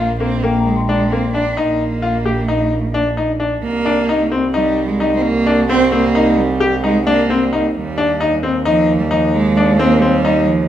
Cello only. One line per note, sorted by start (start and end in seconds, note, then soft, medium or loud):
0.00 0.19 A#3 medium
0.20 0.44 C4 medium
0.43 0.65 A#3 medium
0.65 0.87 G#3 medium
0.88 1.12 G#3 medium
1.11 1.33 C4 medium
1.33 1.59 D4 medium
1.58 3.18 A#3 medium
3.62 4.28 A#3 loud
4.53 4.89 G3 medium
4.88 5.01 G#3 medium
4.99 5.14 G3 medium
5.15 5.23 C4 medium
5.22 5.68 A#3 loud
5.68 5.85 C4 loud
5.85 5.93 C4 medium
5.91 6.40 A#3 loud
6.38 6.83 G3 medium
6.84 7.05 G#3 medium
7.07 7.54 A#3 medium
7.76 8.40 G3 medium
8.66 9.00 F3 medium
8.99 9.12 G3 medium
9.11 9.33 F3 medium
9.33 9.80 G#3 medium
9.78 10.02 A#3 medium
10.01 10.49 G3 medium
10.48 10.68 F3 medium